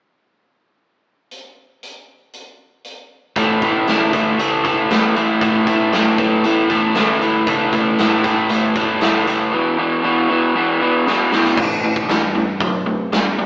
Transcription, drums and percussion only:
1.31 closed hi-hat
1.83 closed hi-hat
2.33 closed hi-hat
2.85 closed hi-hat
3.36 kick, closed hi-hat
3.62 kick, closed hi-hat
3.87 snare, closed hi-hat
4.13 kick, closed hi-hat
4.39 closed hi-hat
4.65 kick, closed hi-hat
4.91 snare, closed hi-hat
5.16 closed hi-hat
5.41 kick, closed hi-hat
5.67 kick, closed hi-hat
5.92 snare, closed hi-hat
6.18 kick, closed hi-hat
6.44 closed hi-hat
6.70 kick, closed hi-hat
6.95 snare, closed hi-hat
7.21 closed hi-hat
7.47 kick, closed hi-hat
7.73 kick, closed hi-hat
7.99 snare, closed hi-hat
8.24 kick, closed hi-hat
8.49 closed hi-hat
8.76 kick, closed hi-hat
9.01 snare, closed hi-hat
9.27 closed hi-hat
11.07 snare
11.32 snare
11.45 snare
11.57 kick, crash
11.96 kick
12.09 snare, open hi-hat
12.60 kick, open hi-hat
13.12 snare, open hi-hat

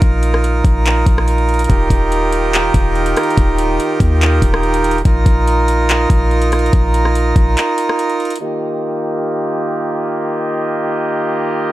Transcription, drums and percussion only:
0.02 kick, closed hi-hat
0.23 closed hi-hat
0.34 cross-stick
0.44 closed hi-hat
0.65 kick, closed hi-hat
0.86 clap, closed hi-hat
1.06 kick, closed hi-hat
1.18 cross-stick
1.28 closed hi-hat
1.38 closed hi-hat
1.49 closed hi-hat
1.54 closed hi-hat
1.59 closed hi-hat
1.64 closed hi-hat
1.70 kick, closed hi-hat
1.90 kick, closed hi-hat
2.12 closed hi-hat
2.33 closed hi-hat
2.54 clap, closed hi-hat
2.74 kick, closed hi-hat
2.96 closed hi-hat
3.06 closed hi-hat
3.16 cross-stick, closed hi-hat
3.23 closed hi-hat
3.30 closed hi-hat
3.37 kick, closed hi-hat
3.58 closed hi-hat
3.80 closed hi-hat
4.00 kick, closed hi-hat
4.21 clap, closed hi-hat
4.42 kick, closed hi-hat
4.54 cross-stick
4.63 closed hi-hat
4.74 closed hi-hat
4.84 closed hi-hat
4.91 closed hi-hat
4.98 closed hi-hat
5.05 kick, closed hi-hat
5.26 kick, closed hi-hat
5.47 closed hi-hat
5.68 closed hi-hat
5.89 clap, closed hi-hat
6.10 kick, closed hi-hat
6.31 closed hi-hat
6.42 closed hi-hat
6.52 cross-stick, closed hi-hat
6.59 closed hi-hat
6.66 closed hi-hat
6.73 kick, closed hi-hat
6.94 closed hi-hat
7.05 cross-stick
7.15 closed hi-hat
7.36 kick, closed hi-hat
7.57 clap, closed hi-hat
7.78 closed hi-hat
7.89 cross-stick
7.99 closed hi-hat
8.10 closed hi-hat
8.20 closed hi-hat
8.25 closed hi-hat
8.30 closed hi-hat
8.36 closed hi-hat

